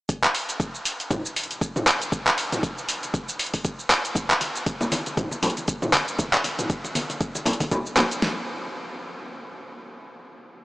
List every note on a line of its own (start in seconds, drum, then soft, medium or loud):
0.09 kick loud
0.09 closed hi-hat medium
0.09 shaker medium
0.24 clap medium
0.24 shaker medium
0.35 open hi-hat loud
0.35 shaker medium
0.49 closed hi-hat soft
0.49 shaker medium
0.60 kick loud
0.60 closed hi-hat medium
0.60 shaker medium
0.75 shaker medium
0.85 open hi-hat loud
0.85 shaker medium
1.00 closed hi-hat soft
1.00 shaker medium
1.11 kick loud
1.11 closed hi-hat medium
1.11 mid tom medium
1.11 shaker medium
1.26 shaker medium
1.36 open hi-hat loud
1.36 shaker medium
1.44 closed hi-hat medium
1.51 closed hi-hat soft
1.51 shaker medium
1.61 kick loud
1.61 closed hi-hat medium
1.61 shaker medium
1.76 mid tom medium
1.76 shaker medium
1.87 clap medium
1.87 open hi-hat loud
1.87 shaker medium
2.02 closed hi-hat soft
2.02 shaker medium
2.12 kick loud
2.12 closed hi-hat medium
2.12 shaker loud
2.27 clap medium
2.27 shaker medium
2.38 open hi-hat loud
2.38 shaker medium
2.52 closed hi-hat soft
2.52 mid tom medium
2.52 shaker loud
2.63 kick loud
2.63 closed hi-hat medium
2.63 shaker medium
2.78 shaker medium
2.89 open hi-hat medium
2.89 shaker loud
3.03 closed hi-hat soft
3.03 shaker medium
3.14 kick loud
3.14 closed hi-hat medium
3.14 shaker medium
3.29 shaker loud
3.39 open hi-hat medium
3.39 shaker medium
3.46 closed hi-hat medium
3.54 kick medium
3.54 open hi-hat medium
3.54 shaker medium
3.65 kick loud
3.65 closed hi-hat medium
3.65 shaker loud
3.79 shaker medium
3.90 clap loud
3.90 open hi-hat medium
3.90 shaker medium
4.05 closed hi-hat soft
4.05 shaker loud
4.15 kick loud
4.15 closed hi-hat medium
4.15 muted conga medium
4.15 high conga medium
4.15 shaker loud
4.30 clap medium
4.30 shaker medium
4.41 open hi-hat medium
4.41 muted conga soft
4.41 shaker medium
4.56 closed hi-hat soft
4.56 shaker loud
4.66 kick loud
4.66 closed hi-hat medium
4.66 shaker medium
4.81 muted conga soft
4.81 low conga medium
4.81 shaker medium
4.92 open hi-hat medium
4.92 high conga loud
4.92 shaker loud
5.06 closed hi-hat soft
5.06 muted conga soft
5.06 shaker medium
5.17 kick loud
5.17 closed hi-hat medium
5.17 mid tom medium
5.17 shaker medium
5.31 muted conga soft
5.31 shaker loud
5.43 open hi-hat medium
5.43 low conga medium
5.43 shaker medium
5.50 closed hi-hat medium
5.57 closed hi-hat soft
5.57 muted conga soft
5.57 shaker medium
5.68 kick loud
5.68 closed hi-hat medium
5.68 shaker loud
5.82 mid tom medium
5.82 high conga medium
5.82 shaker medium
5.93 clap medium
5.93 open hi-hat medium
5.93 muted conga medium
5.93 high conga medium
5.93 shaker medium
6.08 closed hi-hat soft
6.08 shaker loud
6.19 kick loud
6.19 closed hi-hat medium
6.19 muted conga medium
6.19 high conga medium
6.19 shaker medium
6.33 clap medium
6.33 shaker medium
6.44 open hi-hat medium
6.44 muted conga soft
6.44 shaker medium
6.59 closed hi-hat soft
6.59 mid tom medium
6.59 shaker loud
6.70 kick loud
6.70 closed hi-hat medium
6.70 shaker medium
6.84 muted conga soft
6.84 shaker medium
6.95 open hi-hat medium
6.95 high conga medium
6.95 shaker loud
7.10 closed hi-hat soft
7.10 muted conga soft
7.10 shaker medium
7.21 kick loud
7.21 closed hi-hat medium
7.21 shaker medium
7.35 muted conga medium
7.35 shaker loud
7.46 open hi-hat medium
7.46 low conga medium
7.46 shaker medium
7.53 closed hi-hat medium
7.60 kick medium
7.60 open hi-hat medium
7.60 muted conga soft
7.60 high conga loud
7.60 shaker medium
7.71 kick loud
7.71 closed hi-hat medium
7.71 low conga loud
7.71 shaker loud
7.86 shaker medium
7.96 clap medium
7.96 open hi-hat medium
7.96 muted conga medium
7.96 low conga loud
7.96 shaker medium
8.11 closed hi-hat soft
8.11 shaker loud
8.22 snare loud